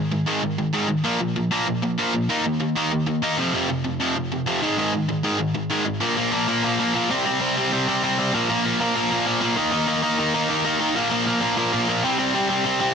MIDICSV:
0, 0, Header, 1, 2, 480
1, 0, Start_track
1, 0, Tempo, 309598
1, 1623, Time_signature, 4, 2, 24, 8
1, 20062, End_track
2, 0, Start_track
2, 0, Title_t, "Overdriven electric guitar"
2, 0, Program_c, 0, 29
2, 178, Note_on_c, 0, 44, 79
2, 186, Note_on_c, 0, 51, 85
2, 394, Note_off_c, 0, 44, 0
2, 398, Note_off_c, 0, 51, 0
2, 411, Note_on_c, 0, 44, 91
2, 424, Note_on_c, 0, 51, 95
2, 433, Note_on_c, 0, 56, 105
2, 640, Note_off_c, 0, 44, 0
2, 647, Note_off_c, 0, 51, 0
2, 652, Note_off_c, 0, 56, 0
2, 662, Note_on_c, 0, 44, 85
2, 666, Note_on_c, 0, 51, 92
2, 877, Note_off_c, 0, 44, 0
2, 879, Note_off_c, 0, 51, 0
2, 911, Note_on_c, 0, 44, 73
2, 916, Note_on_c, 0, 51, 81
2, 1118, Note_off_c, 0, 44, 0
2, 1125, Note_off_c, 0, 51, 0
2, 1136, Note_on_c, 0, 44, 91
2, 1150, Note_on_c, 0, 51, 91
2, 1159, Note_on_c, 0, 56, 95
2, 1350, Note_off_c, 0, 44, 0
2, 1358, Note_off_c, 0, 51, 0
2, 1368, Note_on_c, 0, 44, 80
2, 1376, Note_off_c, 0, 56, 0
2, 1376, Note_on_c, 0, 51, 85
2, 1592, Note_off_c, 0, 44, 0
2, 1596, Note_off_c, 0, 51, 0
2, 1615, Note_on_c, 0, 46, 95
2, 1629, Note_on_c, 0, 53, 106
2, 1631, Note_on_c, 0, 58, 103
2, 1846, Note_off_c, 0, 46, 0
2, 1853, Note_off_c, 0, 53, 0
2, 1854, Note_off_c, 0, 58, 0
2, 1866, Note_on_c, 0, 46, 73
2, 1870, Note_on_c, 0, 53, 80
2, 2082, Note_off_c, 0, 46, 0
2, 2084, Note_off_c, 0, 53, 0
2, 2109, Note_on_c, 0, 46, 72
2, 2113, Note_on_c, 0, 53, 91
2, 2325, Note_off_c, 0, 46, 0
2, 2326, Note_off_c, 0, 53, 0
2, 2341, Note_on_c, 0, 46, 92
2, 2354, Note_on_c, 0, 53, 89
2, 2359, Note_on_c, 0, 58, 107
2, 2566, Note_off_c, 0, 46, 0
2, 2571, Note_off_c, 0, 53, 0
2, 2580, Note_off_c, 0, 58, 0
2, 2584, Note_on_c, 0, 46, 75
2, 2590, Note_on_c, 0, 53, 85
2, 2803, Note_off_c, 0, 46, 0
2, 2806, Note_off_c, 0, 53, 0
2, 2827, Note_on_c, 0, 46, 80
2, 2834, Note_on_c, 0, 53, 90
2, 3045, Note_off_c, 0, 46, 0
2, 3048, Note_off_c, 0, 53, 0
2, 3067, Note_on_c, 0, 46, 94
2, 3080, Note_on_c, 0, 53, 95
2, 3088, Note_on_c, 0, 58, 100
2, 3295, Note_off_c, 0, 46, 0
2, 3302, Note_off_c, 0, 53, 0
2, 3305, Note_off_c, 0, 58, 0
2, 3320, Note_on_c, 0, 46, 77
2, 3321, Note_on_c, 0, 53, 82
2, 3532, Note_off_c, 0, 46, 0
2, 3533, Note_off_c, 0, 53, 0
2, 3556, Note_on_c, 0, 51, 96
2, 3566, Note_on_c, 0, 58, 106
2, 3576, Note_on_c, 0, 63, 112
2, 3781, Note_off_c, 0, 51, 0
2, 3786, Note_off_c, 0, 58, 0
2, 3790, Note_off_c, 0, 63, 0
2, 3798, Note_on_c, 0, 51, 77
2, 3802, Note_on_c, 0, 58, 88
2, 4012, Note_off_c, 0, 51, 0
2, 4015, Note_off_c, 0, 58, 0
2, 4036, Note_on_c, 0, 51, 76
2, 4043, Note_on_c, 0, 58, 89
2, 4252, Note_off_c, 0, 51, 0
2, 4255, Note_off_c, 0, 58, 0
2, 4281, Note_on_c, 0, 51, 93
2, 4293, Note_on_c, 0, 58, 96
2, 4301, Note_on_c, 0, 63, 93
2, 4504, Note_off_c, 0, 51, 0
2, 4510, Note_off_c, 0, 58, 0
2, 4515, Note_off_c, 0, 63, 0
2, 4530, Note_on_c, 0, 51, 74
2, 4530, Note_on_c, 0, 58, 97
2, 4740, Note_off_c, 0, 51, 0
2, 4740, Note_off_c, 0, 58, 0
2, 4756, Note_on_c, 0, 51, 82
2, 4763, Note_on_c, 0, 58, 82
2, 4973, Note_off_c, 0, 51, 0
2, 4977, Note_off_c, 0, 58, 0
2, 4996, Note_on_c, 0, 51, 97
2, 5007, Note_on_c, 0, 58, 87
2, 5018, Note_on_c, 0, 63, 103
2, 5223, Note_off_c, 0, 51, 0
2, 5228, Note_on_c, 0, 41, 93
2, 5229, Note_off_c, 0, 58, 0
2, 5234, Note_off_c, 0, 63, 0
2, 5244, Note_on_c, 0, 48, 103
2, 5253, Note_on_c, 0, 53, 107
2, 5460, Note_off_c, 0, 41, 0
2, 5467, Note_off_c, 0, 48, 0
2, 5472, Note_off_c, 0, 53, 0
2, 5480, Note_on_c, 0, 41, 101
2, 5490, Note_on_c, 0, 48, 104
2, 5497, Note_on_c, 0, 53, 113
2, 5706, Note_off_c, 0, 41, 0
2, 5711, Note_off_c, 0, 48, 0
2, 5714, Note_off_c, 0, 53, 0
2, 5725, Note_on_c, 0, 41, 77
2, 5729, Note_on_c, 0, 48, 94
2, 5939, Note_off_c, 0, 41, 0
2, 5941, Note_off_c, 0, 48, 0
2, 5957, Note_on_c, 0, 41, 76
2, 5964, Note_on_c, 0, 48, 91
2, 6175, Note_off_c, 0, 41, 0
2, 6179, Note_off_c, 0, 48, 0
2, 6199, Note_on_c, 0, 41, 96
2, 6215, Note_on_c, 0, 48, 100
2, 6226, Note_on_c, 0, 53, 111
2, 6426, Note_off_c, 0, 41, 0
2, 6434, Note_off_c, 0, 48, 0
2, 6440, Note_off_c, 0, 53, 0
2, 6452, Note_on_c, 0, 41, 78
2, 6455, Note_on_c, 0, 48, 90
2, 6663, Note_off_c, 0, 41, 0
2, 6665, Note_off_c, 0, 48, 0
2, 6692, Note_on_c, 0, 41, 79
2, 6700, Note_on_c, 0, 48, 93
2, 6899, Note_off_c, 0, 41, 0
2, 6908, Note_off_c, 0, 48, 0
2, 6917, Note_on_c, 0, 41, 90
2, 6933, Note_on_c, 0, 48, 92
2, 6938, Note_on_c, 0, 53, 97
2, 7146, Note_off_c, 0, 41, 0
2, 7154, Note_off_c, 0, 48, 0
2, 7156, Note_off_c, 0, 53, 0
2, 7158, Note_on_c, 0, 44, 91
2, 7164, Note_on_c, 0, 51, 93
2, 7176, Note_on_c, 0, 56, 113
2, 7380, Note_off_c, 0, 44, 0
2, 7390, Note_off_c, 0, 51, 0
2, 7396, Note_off_c, 0, 56, 0
2, 7398, Note_on_c, 0, 44, 97
2, 7414, Note_on_c, 0, 51, 106
2, 7415, Note_on_c, 0, 56, 115
2, 7627, Note_off_c, 0, 44, 0
2, 7629, Note_off_c, 0, 51, 0
2, 7635, Note_off_c, 0, 56, 0
2, 7643, Note_on_c, 0, 44, 86
2, 7647, Note_on_c, 0, 51, 84
2, 7860, Note_off_c, 0, 44, 0
2, 7862, Note_off_c, 0, 51, 0
2, 7885, Note_on_c, 0, 44, 76
2, 7892, Note_on_c, 0, 51, 94
2, 8095, Note_off_c, 0, 44, 0
2, 8104, Note_off_c, 0, 51, 0
2, 8114, Note_on_c, 0, 44, 99
2, 8128, Note_on_c, 0, 51, 100
2, 8132, Note_on_c, 0, 56, 116
2, 8338, Note_off_c, 0, 44, 0
2, 8341, Note_off_c, 0, 51, 0
2, 8354, Note_off_c, 0, 56, 0
2, 8356, Note_on_c, 0, 44, 84
2, 8360, Note_on_c, 0, 51, 89
2, 8577, Note_off_c, 0, 44, 0
2, 8579, Note_off_c, 0, 51, 0
2, 8600, Note_on_c, 0, 44, 77
2, 8607, Note_on_c, 0, 51, 94
2, 8819, Note_off_c, 0, 44, 0
2, 8822, Note_off_c, 0, 51, 0
2, 8837, Note_on_c, 0, 44, 92
2, 8848, Note_on_c, 0, 51, 103
2, 8859, Note_on_c, 0, 56, 103
2, 9059, Note_off_c, 0, 44, 0
2, 9067, Note_off_c, 0, 51, 0
2, 9077, Note_on_c, 0, 44, 76
2, 9078, Note_off_c, 0, 56, 0
2, 9086, Note_on_c, 0, 51, 81
2, 9298, Note_off_c, 0, 44, 0
2, 9302, Note_off_c, 0, 51, 0
2, 9312, Note_on_c, 0, 46, 109
2, 9322, Note_on_c, 0, 53, 113
2, 9332, Note_on_c, 0, 58, 115
2, 9539, Note_off_c, 0, 58, 0
2, 9550, Note_off_c, 0, 53, 0
2, 9557, Note_on_c, 0, 58, 99
2, 9559, Note_off_c, 0, 46, 0
2, 9568, Note_on_c, 0, 53, 89
2, 9577, Note_on_c, 0, 46, 81
2, 9771, Note_off_c, 0, 46, 0
2, 9777, Note_off_c, 0, 53, 0
2, 9789, Note_on_c, 0, 46, 91
2, 9794, Note_off_c, 0, 58, 0
2, 9795, Note_on_c, 0, 53, 105
2, 9812, Note_on_c, 0, 58, 110
2, 10019, Note_off_c, 0, 58, 0
2, 10031, Note_off_c, 0, 53, 0
2, 10038, Note_on_c, 0, 58, 97
2, 10040, Note_off_c, 0, 46, 0
2, 10049, Note_on_c, 0, 53, 92
2, 10059, Note_on_c, 0, 46, 84
2, 10259, Note_off_c, 0, 46, 0
2, 10271, Note_off_c, 0, 53, 0
2, 10278, Note_on_c, 0, 46, 106
2, 10279, Note_off_c, 0, 58, 0
2, 10289, Note_on_c, 0, 53, 110
2, 10298, Note_on_c, 0, 58, 116
2, 10505, Note_off_c, 0, 58, 0
2, 10513, Note_off_c, 0, 53, 0
2, 10519, Note_off_c, 0, 46, 0
2, 10523, Note_on_c, 0, 58, 102
2, 10531, Note_on_c, 0, 53, 90
2, 10537, Note_on_c, 0, 46, 80
2, 10747, Note_off_c, 0, 46, 0
2, 10760, Note_off_c, 0, 53, 0
2, 10765, Note_on_c, 0, 46, 102
2, 10769, Note_off_c, 0, 58, 0
2, 10779, Note_on_c, 0, 53, 110
2, 10788, Note_on_c, 0, 58, 109
2, 10991, Note_off_c, 0, 46, 0
2, 10998, Note_off_c, 0, 53, 0
2, 11002, Note_off_c, 0, 58, 0
2, 11003, Note_on_c, 0, 48, 101
2, 11014, Note_on_c, 0, 55, 101
2, 11025, Note_on_c, 0, 60, 116
2, 11226, Note_off_c, 0, 60, 0
2, 11237, Note_off_c, 0, 55, 0
2, 11245, Note_on_c, 0, 60, 114
2, 11247, Note_off_c, 0, 48, 0
2, 11255, Note_on_c, 0, 55, 105
2, 11266, Note_on_c, 0, 48, 92
2, 11461, Note_off_c, 0, 48, 0
2, 11471, Note_off_c, 0, 55, 0
2, 11479, Note_off_c, 0, 60, 0
2, 11480, Note_on_c, 0, 48, 92
2, 11490, Note_on_c, 0, 55, 96
2, 11497, Note_on_c, 0, 60, 103
2, 11711, Note_off_c, 0, 60, 0
2, 11721, Note_off_c, 0, 55, 0
2, 11730, Note_on_c, 0, 60, 118
2, 11732, Note_off_c, 0, 48, 0
2, 11739, Note_on_c, 0, 55, 99
2, 11750, Note_on_c, 0, 48, 90
2, 11945, Note_off_c, 0, 48, 0
2, 11956, Note_off_c, 0, 55, 0
2, 11964, Note_on_c, 0, 48, 89
2, 11965, Note_off_c, 0, 60, 0
2, 11975, Note_on_c, 0, 55, 91
2, 11984, Note_on_c, 0, 60, 95
2, 12192, Note_off_c, 0, 60, 0
2, 12203, Note_off_c, 0, 55, 0
2, 12209, Note_off_c, 0, 48, 0
2, 12211, Note_on_c, 0, 60, 104
2, 12222, Note_on_c, 0, 55, 92
2, 12227, Note_on_c, 0, 48, 90
2, 12432, Note_off_c, 0, 48, 0
2, 12442, Note_off_c, 0, 55, 0
2, 12446, Note_off_c, 0, 60, 0
2, 12450, Note_on_c, 0, 48, 98
2, 12460, Note_on_c, 0, 55, 93
2, 12465, Note_on_c, 0, 60, 102
2, 12676, Note_off_c, 0, 60, 0
2, 12680, Note_off_c, 0, 55, 0
2, 12690, Note_off_c, 0, 48, 0
2, 12694, Note_on_c, 0, 60, 104
2, 12699, Note_on_c, 0, 55, 111
2, 12708, Note_on_c, 0, 48, 94
2, 12914, Note_off_c, 0, 48, 0
2, 12914, Note_off_c, 0, 60, 0
2, 12917, Note_off_c, 0, 55, 0
2, 12920, Note_on_c, 0, 46, 99
2, 12932, Note_on_c, 0, 53, 107
2, 12944, Note_on_c, 0, 58, 116
2, 13163, Note_off_c, 0, 58, 0
2, 13164, Note_off_c, 0, 53, 0
2, 13169, Note_on_c, 0, 58, 118
2, 13170, Note_off_c, 0, 46, 0
2, 13182, Note_on_c, 0, 53, 104
2, 13189, Note_on_c, 0, 46, 90
2, 13389, Note_off_c, 0, 46, 0
2, 13403, Note_off_c, 0, 53, 0
2, 13407, Note_on_c, 0, 46, 90
2, 13422, Note_on_c, 0, 53, 89
2, 13428, Note_off_c, 0, 58, 0
2, 13434, Note_on_c, 0, 58, 99
2, 13637, Note_off_c, 0, 58, 0
2, 13638, Note_off_c, 0, 53, 0
2, 13640, Note_off_c, 0, 46, 0
2, 13643, Note_on_c, 0, 58, 104
2, 13657, Note_on_c, 0, 53, 93
2, 13659, Note_on_c, 0, 46, 92
2, 13864, Note_off_c, 0, 46, 0
2, 13876, Note_off_c, 0, 53, 0
2, 13882, Note_on_c, 0, 46, 89
2, 13895, Note_off_c, 0, 58, 0
2, 13895, Note_on_c, 0, 53, 100
2, 13901, Note_on_c, 0, 58, 98
2, 14112, Note_off_c, 0, 53, 0
2, 14112, Note_off_c, 0, 58, 0
2, 14118, Note_on_c, 0, 58, 99
2, 14121, Note_off_c, 0, 46, 0
2, 14130, Note_on_c, 0, 53, 103
2, 14139, Note_on_c, 0, 46, 91
2, 14334, Note_off_c, 0, 46, 0
2, 14343, Note_off_c, 0, 53, 0
2, 14352, Note_on_c, 0, 46, 85
2, 14362, Note_on_c, 0, 53, 96
2, 14364, Note_off_c, 0, 58, 0
2, 14370, Note_on_c, 0, 58, 98
2, 14577, Note_off_c, 0, 58, 0
2, 14580, Note_off_c, 0, 53, 0
2, 14583, Note_on_c, 0, 58, 107
2, 14589, Note_off_c, 0, 46, 0
2, 14599, Note_on_c, 0, 53, 100
2, 14608, Note_on_c, 0, 46, 94
2, 14815, Note_off_c, 0, 46, 0
2, 14821, Note_on_c, 0, 51, 99
2, 14824, Note_off_c, 0, 53, 0
2, 14831, Note_off_c, 0, 58, 0
2, 14831, Note_on_c, 0, 58, 104
2, 14843, Note_on_c, 0, 63, 113
2, 15048, Note_off_c, 0, 63, 0
2, 15065, Note_off_c, 0, 51, 0
2, 15067, Note_on_c, 0, 63, 112
2, 15069, Note_off_c, 0, 58, 0
2, 15075, Note_on_c, 0, 58, 105
2, 15084, Note_on_c, 0, 51, 94
2, 15286, Note_off_c, 0, 51, 0
2, 15303, Note_off_c, 0, 63, 0
2, 15305, Note_on_c, 0, 51, 92
2, 15309, Note_off_c, 0, 58, 0
2, 15315, Note_on_c, 0, 58, 100
2, 15321, Note_on_c, 0, 63, 106
2, 15523, Note_off_c, 0, 63, 0
2, 15542, Note_on_c, 0, 63, 103
2, 15548, Note_off_c, 0, 58, 0
2, 15550, Note_off_c, 0, 51, 0
2, 15554, Note_on_c, 0, 58, 100
2, 15568, Note_on_c, 0, 51, 83
2, 15771, Note_off_c, 0, 51, 0
2, 15781, Note_off_c, 0, 58, 0
2, 15789, Note_off_c, 0, 63, 0
2, 15790, Note_on_c, 0, 51, 90
2, 15799, Note_on_c, 0, 58, 90
2, 15808, Note_on_c, 0, 63, 94
2, 16015, Note_off_c, 0, 63, 0
2, 16024, Note_off_c, 0, 58, 0
2, 16029, Note_off_c, 0, 51, 0
2, 16033, Note_on_c, 0, 63, 107
2, 16043, Note_on_c, 0, 58, 106
2, 16048, Note_on_c, 0, 51, 91
2, 16245, Note_off_c, 0, 51, 0
2, 16254, Note_off_c, 0, 58, 0
2, 16262, Note_off_c, 0, 63, 0
2, 16264, Note_on_c, 0, 51, 95
2, 16273, Note_on_c, 0, 58, 88
2, 16280, Note_on_c, 0, 63, 112
2, 16483, Note_off_c, 0, 63, 0
2, 16497, Note_off_c, 0, 58, 0
2, 16500, Note_off_c, 0, 51, 0
2, 16502, Note_on_c, 0, 63, 118
2, 16515, Note_on_c, 0, 58, 98
2, 16518, Note_on_c, 0, 51, 94
2, 16725, Note_off_c, 0, 51, 0
2, 16733, Note_off_c, 0, 58, 0
2, 16741, Note_off_c, 0, 63, 0
2, 16744, Note_on_c, 0, 51, 96
2, 16751, Note_on_c, 0, 58, 93
2, 16760, Note_on_c, 0, 63, 95
2, 16973, Note_off_c, 0, 51, 0
2, 16977, Note_off_c, 0, 58, 0
2, 16979, Note_on_c, 0, 46, 110
2, 16981, Note_off_c, 0, 63, 0
2, 16990, Note_on_c, 0, 53, 106
2, 16997, Note_on_c, 0, 58, 115
2, 17193, Note_off_c, 0, 58, 0
2, 17207, Note_off_c, 0, 53, 0
2, 17211, Note_on_c, 0, 58, 98
2, 17214, Note_off_c, 0, 46, 0
2, 17226, Note_on_c, 0, 53, 91
2, 17232, Note_on_c, 0, 46, 83
2, 17433, Note_off_c, 0, 46, 0
2, 17448, Note_off_c, 0, 53, 0
2, 17452, Note_on_c, 0, 46, 88
2, 17454, Note_off_c, 0, 58, 0
2, 17467, Note_on_c, 0, 53, 98
2, 17472, Note_on_c, 0, 58, 115
2, 17671, Note_off_c, 0, 58, 0
2, 17685, Note_off_c, 0, 53, 0
2, 17689, Note_off_c, 0, 46, 0
2, 17690, Note_on_c, 0, 58, 97
2, 17703, Note_on_c, 0, 53, 86
2, 17708, Note_on_c, 0, 46, 75
2, 17918, Note_off_c, 0, 46, 0
2, 17927, Note_off_c, 0, 53, 0
2, 17936, Note_on_c, 0, 46, 96
2, 17941, Note_off_c, 0, 58, 0
2, 17946, Note_on_c, 0, 53, 110
2, 17960, Note_on_c, 0, 58, 107
2, 18161, Note_off_c, 0, 58, 0
2, 18172, Note_off_c, 0, 53, 0
2, 18180, Note_on_c, 0, 58, 98
2, 18181, Note_off_c, 0, 46, 0
2, 18191, Note_on_c, 0, 53, 95
2, 18199, Note_on_c, 0, 46, 89
2, 18396, Note_off_c, 0, 46, 0
2, 18412, Note_off_c, 0, 53, 0
2, 18414, Note_on_c, 0, 46, 98
2, 18419, Note_off_c, 0, 58, 0
2, 18431, Note_on_c, 0, 53, 94
2, 18438, Note_on_c, 0, 58, 116
2, 18644, Note_off_c, 0, 46, 0
2, 18652, Note_off_c, 0, 53, 0
2, 18654, Note_on_c, 0, 48, 100
2, 18656, Note_off_c, 0, 58, 0
2, 18668, Note_on_c, 0, 55, 108
2, 18674, Note_on_c, 0, 60, 106
2, 18872, Note_off_c, 0, 60, 0
2, 18883, Note_off_c, 0, 55, 0
2, 18890, Note_off_c, 0, 48, 0
2, 18891, Note_on_c, 0, 60, 126
2, 18901, Note_on_c, 0, 55, 115
2, 18909, Note_on_c, 0, 48, 90
2, 19105, Note_off_c, 0, 48, 0
2, 19112, Note_off_c, 0, 55, 0
2, 19123, Note_on_c, 0, 48, 92
2, 19124, Note_off_c, 0, 60, 0
2, 19131, Note_on_c, 0, 55, 101
2, 19143, Note_on_c, 0, 60, 101
2, 19343, Note_off_c, 0, 60, 0
2, 19359, Note_off_c, 0, 55, 0
2, 19362, Note_on_c, 0, 60, 106
2, 19364, Note_off_c, 0, 48, 0
2, 19378, Note_on_c, 0, 55, 101
2, 19383, Note_on_c, 0, 48, 94
2, 19586, Note_off_c, 0, 48, 0
2, 19594, Note_off_c, 0, 55, 0
2, 19602, Note_off_c, 0, 60, 0
2, 19604, Note_on_c, 0, 48, 81
2, 19612, Note_on_c, 0, 55, 93
2, 19620, Note_on_c, 0, 60, 101
2, 19826, Note_off_c, 0, 60, 0
2, 19838, Note_off_c, 0, 55, 0
2, 19845, Note_on_c, 0, 60, 103
2, 19847, Note_off_c, 0, 48, 0
2, 19857, Note_on_c, 0, 55, 96
2, 19865, Note_on_c, 0, 48, 94
2, 20062, Note_off_c, 0, 48, 0
2, 20062, Note_off_c, 0, 55, 0
2, 20062, Note_off_c, 0, 60, 0
2, 20062, End_track
0, 0, End_of_file